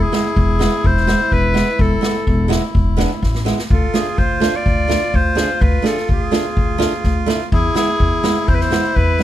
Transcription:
Already playing: accordion E4
0.03 clarinet G#4
0.12 nylon-string guitar G#3 B3 E4, clarinet G#4, snare
0.36 upright bass E1, kick
0.59 nylon-string guitar G#3 B3 E4, snare
0.84 upright bass E1, clarinet C5, kick
0.97 snare
1.07 nylon-string guitar G#3 B3 E4, snare
1.32 upright bass E1, clarinet B4, kick
1.54 nylon-string guitar G#3 B3 E4, snare
1.79 upright bass E1, clarinet A4, kick
2.01 nylon-string guitar G#3 B3 E4, snare
2.27 upright bass E1, accordion E4, kick
2.48 nylon-string guitar G#3 B3 E4, snare
2.75 upright bass E1, kick
2.97 nylon-string guitar G#3 B3 D4, snare
3.22 upright bass A1, kick, snare
3.35 snare
3.45 nylon-string guitar G#3 B3 E4, snare
3.59 snare
3.70 upright bass D2, accordion F4, clarinet A4, kick
3.94 nylon-string guitar A3 D4 F4, clarinet G#4, snare
4.18 upright bass D2, clarinet C5, kick
4.40 nylon-string guitar A3 D4 F4, snare
4.56 clarinet D5
4.66 upright bass D2, kick
4.88 nylon-string guitar A3 D4 F4, snare
5.14 upright bass D2, clarinet C5, kick
5.35 nylon-string guitar A3 D4 G#4, snare
5.61 upright bass D2, clarinet B4, kick
5.82 nylon-string guitar A3 D4 G#4, clarinet A4, snare
5.98 snare
6.09 upright bass D2, clarinet G#4, kick
6.31 nylon-string guitar A3 D4 F4, snare
6.57 upright bass D2, kick
6.78 nylon-string guitar A3 D4 F4, snare
7.04 upright bass D2, kick, snare
7.26 nylon-string guitar A3 D4 E4, snare
7.52 upright bass E2, accordion E4, clarinet G#4, kick
7.75 nylon-string guitar G#3 B3 E4, clarinet G#4, snare
8.00 upright bass E2, kick
8.23 nylon-string guitar G#3 B3 E4, snare
8.48 upright bass E2, clarinet C5, kick
8.55 clarinet B4
8.61 clarinet C5, snare
8.70 nylon-string guitar G#3 B3 E4, snare
8.96 upright bass E2, clarinet B4, kick
9.19 nylon-string guitar G#3 B3

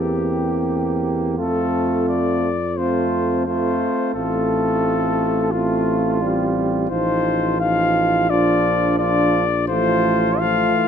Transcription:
Already playing: bass trombone E2
0.00 trombone A#3, french horn C4, cornet G4, flugelhorn G4
1.38 bass trombone F2, trombone A3, french horn C4, flugelhorn F4, cornet A4
2.09 cornet D5
2.78 trombone A3, french horn C4, flugelhorn F4, cornet C5
3.46 trombone A3, french horn C4, flugelhorn F4, cornet C5
4.15 bass trombone A1, trombone A3, french horn C4, flugelhorn F4, cornet A4
5.52 trombone A3, french horn C4, cornet F4, flugelhorn F4
6.22 trombone G3, french horn C4
6.90 bass trombone A1, trombone F3, french horn D#4, flugelhorn F4, cornet C5
7.60 trombone F3, french horn D#4, flugelhorn F4, cornet F5
8.30 bass trombone A#1, trombone F3, french horn D4, flugelhorn F4, cornet D5
8.99 trombone F3, french horn D4, flugelhorn F4, cornet D5
9.68 bass trombone A1, trombone F3, french horn A3, flugelhorn F4, cornet C5
10.39 trombone F3, french horn A3, flugelhorn F4, cornet F5
10.76 trombone E3

